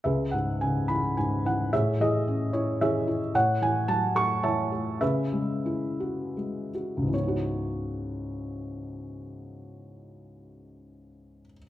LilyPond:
<<
  \new Staff \with { instrumentName = "Felt piano" } { \time 3/4 \key cis \minor \tempo 4 = 100 << { e''8 fis''8 gis''8 b''8 gis''8 fis''8 | e''8 dis''4 cis''8 e''8. r16 | fis''8 gis''8 a''8 cis'''8 a''4 | e''2~ e''8 r8 |
cis''2.~ | cis''2. | } \\ { <gis' b'>4. r4. | <gis' cis''>8 gis'4. <gis' cis''>4 | cis''4. r8 <cis'' e''>4 | <gis' b'>2~ <gis' b'>8 r8 |
r2. | r2. | } >> }
  \new Staff \with { instrumentName = "Felt piano" } { \clef bass \time 3/4 \key cis \minor cis,8 gis,8 cis8 e8 gis,8 e8 | a,8 e8 cis'8 e'8 e8 e'8 | a,8 e8 fis8 a8 e8 a8 | cis8 gis8 e'8 fis'8 gis8 fis'8 |
<cis, gis, e b cis' dis' fis'>2.~ | <cis, gis, e b cis' dis' fis'>2. | }
>>